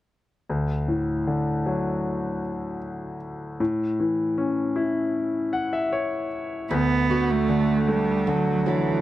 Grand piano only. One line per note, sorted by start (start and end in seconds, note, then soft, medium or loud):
0.49 3.56 D2 soft
0.88 2.40 A2 soft
1.27 2.78 D3 soft
1.66 3.17 F#3 soft
3.60 6.66 A2 soft
4.00 5.49 E3 soft
4.38 5.88 C#4 soft
4.76 6.27 E4 soft
5.53 5.71 F#5 soft
5.73 5.91 E5 soft
5.93 6.66 C#5 soft
6.71 9.01 D2 soft
7.10 8.62 F#4 soft
7.49 8.26 D3 soft
7.88 9.01 A3 soft
8.28 9.01 D3 soft
8.67 9.01 F#3 soft